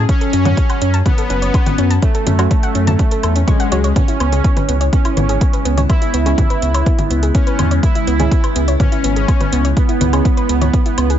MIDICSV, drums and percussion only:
0, 0, Header, 1, 2, 480
1, 0, Start_track
1, 0, Key_signature, 4, "minor"
1, 0, Tempo, 483871
1, 88, Time_signature, 4, 2, 24, 8
1, 11098, End_track
2, 0, Start_track
2, 0, Title_t, "Drums"
2, 89, Note_on_c, 9, 36, 113
2, 89, Note_on_c, 9, 42, 55
2, 188, Note_off_c, 9, 36, 0
2, 188, Note_off_c, 9, 42, 0
2, 210, Note_on_c, 9, 42, 55
2, 310, Note_off_c, 9, 42, 0
2, 329, Note_on_c, 9, 42, 104
2, 429, Note_off_c, 9, 42, 0
2, 450, Note_on_c, 9, 42, 56
2, 450, Note_on_c, 9, 64, 102
2, 550, Note_off_c, 9, 42, 0
2, 550, Note_off_c, 9, 64, 0
2, 569, Note_on_c, 9, 36, 113
2, 569, Note_on_c, 9, 42, 56
2, 668, Note_off_c, 9, 36, 0
2, 668, Note_off_c, 9, 42, 0
2, 691, Note_on_c, 9, 42, 55
2, 691, Note_on_c, 9, 77, 53
2, 790, Note_off_c, 9, 42, 0
2, 790, Note_off_c, 9, 77, 0
2, 809, Note_on_c, 9, 42, 104
2, 908, Note_off_c, 9, 42, 0
2, 930, Note_on_c, 9, 42, 56
2, 1030, Note_off_c, 9, 42, 0
2, 1048, Note_on_c, 9, 36, 116
2, 1050, Note_on_c, 9, 42, 55
2, 1050, Note_on_c, 9, 64, 95
2, 1148, Note_off_c, 9, 36, 0
2, 1149, Note_off_c, 9, 42, 0
2, 1149, Note_off_c, 9, 64, 0
2, 1170, Note_on_c, 9, 42, 55
2, 1270, Note_off_c, 9, 42, 0
2, 1290, Note_on_c, 9, 42, 106
2, 1389, Note_off_c, 9, 42, 0
2, 1411, Note_on_c, 9, 42, 56
2, 1510, Note_off_c, 9, 42, 0
2, 1528, Note_on_c, 9, 36, 115
2, 1530, Note_on_c, 9, 42, 56
2, 1530, Note_on_c, 9, 77, 58
2, 1628, Note_off_c, 9, 36, 0
2, 1629, Note_off_c, 9, 42, 0
2, 1629, Note_off_c, 9, 77, 0
2, 1651, Note_on_c, 9, 42, 53
2, 1651, Note_on_c, 9, 64, 98
2, 1750, Note_off_c, 9, 42, 0
2, 1750, Note_off_c, 9, 64, 0
2, 1769, Note_on_c, 9, 42, 103
2, 1868, Note_off_c, 9, 42, 0
2, 1890, Note_on_c, 9, 42, 56
2, 1989, Note_off_c, 9, 42, 0
2, 2008, Note_on_c, 9, 36, 114
2, 2008, Note_on_c, 9, 42, 59
2, 2107, Note_off_c, 9, 36, 0
2, 2108, Note_off_c, 9, 42, 0
2, 2130, Note_on_c, 9, 42, 59
2, 2229, Note_off_c, 9, 42, 0
2, 2248, Note_on_c, 9, 42, 107
2, 2248, Note_on_c, 9, 64, 96
2, 2347, Note_off_c, 9, 42, 0
2, 2347, Note_off_c, 9, 64, 0
2, 2369, Note_on_c, 9, 42, 60
2, 2369, Note_on_c, 9, 77, 54
2, 2468, Note_off_c, 9, 42, 0
2, 2468, Note_off_c, 9, 77, 0
2, 2488, Note_on_c, 9, 36, 116
2, 2488, Note_on_c, 9, 42, 58
2, 2587, Note_off_c, 9, 36, 0
2, 2588, Note_off_c, 9, 42, 0
2, 2610, Note_on_c, 9, 42, 58
2, 2709, Note_off_c, 9, 42, 0
2, 2728, Note_on_c, 9, 42, 108
2, 2828, Note_off_c, 9, 42, 0
2, 2850, Note_on_c, 9, 42, 60
2, 2850, Note_on_c, 9, 64, 100
2, 2949, Note_off_c, 9, 42, 0
2, 2949, Note_off_c, 9, 64, 0
2, 2968, Note_on_c, 9, 36, 114
2, 2968, Note_on_c, 9, 42, 56
2, 3067, Note_off_c, 9, 36, 0
2, 3068, Note_off_c, 9, 42, 0
2, 3089, Note_on_c, 9, 42, 60
2, 3188, Note_off_c, 9, 42, 0
2, 3208, Note_on_c, 9, 42, 105
2, 3208, Note_on_c, 9, 77, 53
2, 3307, Note_off_c, 9, 42, 0
2, 3307, Note_off_c, 9, 77, 0
2, 3329, Note_on_c, 9, 42, 58
2, 3429, Note_off_c, 9, 42, 0
2, 3448, Note_on_c, 9, 36, 117
2, 3449, Note_on_c, 9, 42, 59
2, 3449, Note_on_c, 9, 64, 99
2, 3547, Note_off_c, 9, 36, 0
2, 3548, Note_off_c, 9, 42, 0
2, 3548, Note_off_c, 9, 64, 0
2, 3570, Note_on_c, 9, 42, 58
2, 3669, Note_off_c, 9, 42, 0
2, 3689, Note_on_c, 9, 42, 105
2, 3788, Note_off_c, 9, 42, 0
2, 3810, Note_on_c, 9, 42, 58
2, 3910, Note_off_c, 9, 42, 0
2, 3928, Note_on_c, 9, 36, 122
2, 3929, Note_on_c, 9, 42, 60
2, 3929, Note_on_c, 9, 64, 92
2, 4028, Note_off_c, 9, 36, 0
2, 4028, Note_off_c, 9, 42, 0
2, 4028, Note_off_c, 9, 64, 0
2, 4050, Note_on_c, 9, 42, 60
2, 4149, Note_off_c, 9, 42, 0
2, 4169, Note_on_c, 9, 42, 106
2, 4169, Note_on_c, 9, 77, 52
2, 4269, Note_off_c, 9, 42, 0
2, 4269, Note_off_c, 9, 77, 0
2, 4290, Note_on_c, 9, 42, 61
2, 4389, Note_off_c, 9, 42, 0
2, 4408, Note_on_c, 9, 36, 123
2, 4409, Note_on_c, 9, 42, 60
2, 4508, Note_off_c, 9, 36, 0
2, 4508, Note_off_c, 9, 42, 0
2, 4530, Note_on_c, 9, 42, 57
2, 4530, Note_on_c, 9, 64, 95
2, 4629, Note_off_c, 9, 42, 0
2, 4629, Note_off_c, 9, 64, 0
2, 4649, Note_on_c, 9, 42, 109
2, 4748, Note_off_c, 9, 42, 0
2, 4770, Note_on_c, 9, 42, 61
2, 4869, Note_off_c, 9, 42, 0
2, 4888, Note_on_c, 9, 36, 119
2, 4889, Note_on_c, 9, 42, 58
2, 4988, Note_off_c, 9, 36, 0
2, 4988, Note_off_c, 9, 42, 0
2, 5010, Note_on_c, 9, 42, 59
2, 5010, Note_on_c, 9, 77, 51
2, 5109, Note_off_c, 9, 42, 0
2, 5109, Note_off_c, 9, 77, 0
2, 5129, Note_on_c, 9, 42, 111
2, 5129, Note_on_c, 9, 64, 99
2, 5228, Note_off_c, 9, 42, 0
2, 5228, Note_off_c, 9, 64, 0
2, 5249, Note_on_c, 9, 42, 60
2, 5349, Note_off_c, 9, 42, 0
2, 5368, Note_on_c, 9, 42, 62
2, 5369, Note_on_c, 9, 36, 119
2, 5468, Note_off_c, 9, 36, 0
2, 5468, Note_off_c, 9, 42, 0
2, 5490, Note_on_c, 9, 42, 59
2, 5589, Note_off_c, 9, 42, 0
2, 5609, Note_on_c, 9, 42, 110
2, 5708, Note_off_c, 9, 42, 0
2, 5730, Note_on_c, 9, 42, 59
2, 5730, Note_on_c, 9, 64, 94
2, 5829, Note_off_c, 9, 42, 0
2, 5829, Note_off_c, 9, 64, 0
2, 5849, Note_on_c, 9, 36, 125
2, 5849, Note_on_c, 9, 42, 59
2, 5849, Note_on_c, 9, 77, 51
2, 5948, Note_off_c, 9, 36, 0
2, 5948, Note_off_c, 9, 42, 0
2, 5948, Note_off_c, 9, 77, 0
2, 5970, Note_on_c, 9, 42, 59
2, 6069, Note_off_c, 9, 42, 0
2, 6089, Note_on_c, 9, 42, 112
2, 6188, Note_off_c, 9, 42, 0
2, 6211, Note_on_c, 9, 42, 61
2, 6310, Note_off_c, 9, 42, 0
2, 6328, Note_on_c, 9, 36, 122
2, 6330, Note_on_c, 9, 42, 61
2, 6330, Note_on_c, 9, 64, 93
2, 6428, Note_off_c, 9, 36, 0
2, 6429, Note_off_c, 9, 42, 0
2, 6429, Note_off_c, 9, 64, 0
2, 6450, Note_on_c, 9, 42, 58
2, 6550, Note_off_c, 9, 42, 0
2, 6570, Note_on_c, 9, 42, 113
2, 6669, Note_off_c, 9, 42, 0
2, 6691, Note_on_c, 9, 42, 61
2, 6691, Note_on_c, 9, 77, 53
2, 6790, Note_off_c, 9, 42, 0
2, 6790, Note_off_c, 9, 77, 0
2, 6808, Note_on_c, 9, 36, 127
2, 6810, Note_on_c, 9, 42, 57
2, 6908, Note_off_c, 9, 36, 0
2, 6909, Note_off_c, 9, 42, 0
2, 6930, Note_on_c, 9, 42, 60
2, 6930, Note_on_c, 9, 64, 94
2, 7029, Note_off_c, 9, 42, 0
2, 7029, Note_off_c, 9, 64, 0
2, 7049, Note_on_c, 9, 42, 118
2, 7148, Note_off_c, 9, 42, 0
2, 7170, Note_on_c, 9, 42, 60
2, 7269, Note_off_c, 9, 42, 0
2, 7288, Note_on_c, 9, 36, 124
2, 7288, Note_on_c, 9, 42, 60
2, 7387, Note_off_c, 9, 42, 0
2, 7388, Note_off_c, 9, 36, 0
2, 7410, Note_on_c, 9, 42, 58
2, 7509, Note_off_c, 9, 42, 0
2, 7528, Note_on_c, 9, 42, 113
2, 7528, Note_on_c, 9, 64, 93
2, 7528, Note_on_c, 9, 77, 52
2, 7628, Note_off_c, 9, 42, 0
2, 7628, Note_off_c, 9, 64, 0
2, 7628, Note_off_c, 9, 77, 0
2, 7650, Note_on_c, 9, 42, 61
2, 7749, Note_off_c, 9, 42, 0
2, 7768, Note_on_c, 9, 36, 127
2, 7769, Note_on_c, 9, 42, 59
2, 7868, Note_off_c, 9, 36, 0
2, 7868, Note_off_c, 9, 42, 0
2, 7890, Note_on_c, 9, 42, 59
2, 7989, Note_off_c, 9, 42, 0
2, 8010, Note_on_c, 9, 42, 114
2, 8109, Note_off_c, 9, 42, 0
2, 8131, Note_on_c, 9, 42, 59
2, 8131, Note_on_c, 9, 64, 93
2, 8230, Note_off_c, 9, 42, 0
2, 8230, Note_off_c, 9, 64, 0
2, 8248, Note_on_c, 9, 36, 126
2, 8249, Note_on_c, 9, 42, 61
2, 8348, Note_off_c, 9, 36, 0
2, 8349, Note_off_c, 9, 42, 0
2, 8370, Note_on_c, 9, 42, 59
2, 8370, Note_on_c, 9, 77, 52
2, 8469, Note_off_c, 9, 42, 0
2, 8469, Note_off_c, 9, 77, 0
2, 8489, Note_on_c, 9, 42, 113
2, 8588, Note_off_c, 9, 42, 0
2, 8610, Note_on_c, 9, 42, 61
2, 8709, Note_off_c, 9, 42, 0
2, 8729, Note_on_c, 9, 36, 125
2, 8729, Note_on_c, 9, 42, 56
2, 8729, Note_on_c, 9, 64, 88
2, 8828, Note_off_c, 9, 36, 0
2, 8828, Note_off_c, 9, 42, 0
2, 8828, Note_off_c, 9, 64, 0
2, 8850, Note_on_c, 9, 42, 61
2, 8949, Note_off_c, 9, 42, 0
2, 8969, Note_on_c, 9, 42, 113
2, 9068, Note_off_c, 9, 42, 0
2, 9090, Note_on_c, 9, 42, 58
2, 9190, Note_off_c, 9, 42, 0
2, 9209, Note_on_c, 9, 36, 125
2, 9209, Note_on_c, 9, 42, 59
2, 9209, Note_on_c, 9, 77, 53
2, 9308, Note_off_c, 9, 36, 0
2, 9308, Note_off_c, 9, 42, 0
2, 9308, Note_off_c, 9, 77, 0
2, 9330, Note_on_c, 9, 42, 57
2, 9330, Note_on_c, 9, 64, 86
2, 9429, Note_off_c, 9, 42, 0
2, 9429, Note_off_c, 9, 64, 0
2, 9449, Note_on_c, 9, 42, 113
2, 9548, Note_off_c, 9, 42, 0
2, 9570, Note_on_c, 9, 42, 59
2, 9669, Note_off_c, 9, 42, 0
2, 9689, Note_on_c, 9, 36, 127
2, 9690, Note_on_c, 9, 42, 56
2, 9788, Note_off_c, 9, 36, 0
2, 9789, Note_off_c, 9, 42, 0
2, 9810, Note_on_c, 9, 42, 56
2, 9909, Note_off_c, 9, 42, 0
2, 9929, Note_on_c, 9, 42, 110
2, 9929, Note_on_c, 9, 64, 93
2, 10028, Note_off_c, 9, 42, 0
2, 10028, Note_off_c, 9, 64, 0
2, 10050, Note_on_c, 9, 42, 59
2, 10050, Note_on_c, 9, 77, 55
2, 10149, Note_off_c, 9, 42, 0
2, 10149, Note_off_c, 9, 77, 0
2, 10169, Note_on_c, 9, 36, 122
2, 10169, Note_on_c, 9, 42, 57
2, 10268, Note_off_c, 9, 36, 0
2, 10268, Note_off_c, 9, 42, 0
2, 10291, Note_on_c, 9, 42, 56
2, 10390, Note_off_c, 9, 42, 0
2, 10409, Note_on_c, 9, 42, 113
2, 10508, Note_off_c, 9, 42, 0
2, 10530, Note_on_c, 9, 42, 57
2, 10530, Note_on_c, 9, 64, 96
2, 10630, Note_off_c, 9, 42, 0
2, 10630, Note_off_c, 9, 64, 0
2, 10649, Note_on_c, 9, 36, 123
2, 10650, Note_on_c, 9, 42, 54
2, 10748, Note_off_c, 9, 36, 0
2, 10749, Note_off_c, 9, 42, 0
2, 10771, Note_on_c, 9, 42, 57
2, 10870, Note_off_c, 9, 42, 0
2, 10890, Note_on_c, 9, 42, 110
2, 10890, Note_on_c, 9, 77, 55
2, 10989, Note_off_c, 9, 42, 0
2, 10989, Note_off_c, 9, 77, 0
2, 11011, Note_on_c, 9, 42, 55
2, 11098, Note_off_c, 9, 42, 0
2, 11098, End_track
0, 0, End_of_file